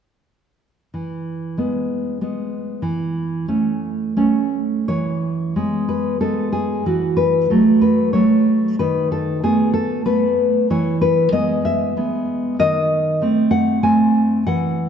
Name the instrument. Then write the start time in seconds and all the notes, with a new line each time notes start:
nylon-string guitar
0.94 E3
1.58 G#3 B3
2.21 G#3 B3
2.82 E3
3.48 A3 C#4
4.17 A3 C#4
4.88 E3 C#5
5.56 G#3 B3
5.89 B4
6.21 G#3 B3 A4
6.52 G#4
6.86 E3 F#4
7.17 B4
7.50 F#3 A3 A4
7.81 B4
8.13 F#3 A3 C#5
8.79 D#3 B4
9.12 A4
9.44 A3 B3 G#4
9.74 A4
10.06 A3 B3 B4
10.70 E3 C#5
11.01 B4
11.32 G#3 B3 D#5
11.65 E5
11.97 G#3 B3
12.59 D#3 D#5
13.22 A3 C4
13.51 F#5
13.83 A3 C4 G#5
14.47 E3 F#5